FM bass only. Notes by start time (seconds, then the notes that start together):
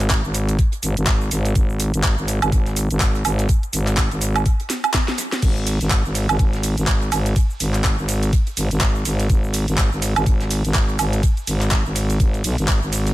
Already playing: G#1
0.24 G#1
0.83 G#1
0.97 G#1
1.31 G#1
1.55 G#1
1.94 G#1
2.18 G#1
2.42 G#1
2.52 G#1
2.90 G#1
3.25 G#1
3.73 G#1
4.11 G#1
5.43 G#1
5.81 G#1
6.05 G#1
6.29 G#1
6.39 G#1
6.78 G#1
7.12 G#1
7.60 G#1
7.98 G#1
8.57 G#1
8.71 G#1
9.05 G#1
9.30 G#1
9.68 G#1
9.92 G#1
10.16 G#1
10.26 G#1
10.65 G#1
10.99 G#1
11.47 G#1
11.86 G#1
12.20 G#1
12.44 B1
12.58 G#1
12.82 G#1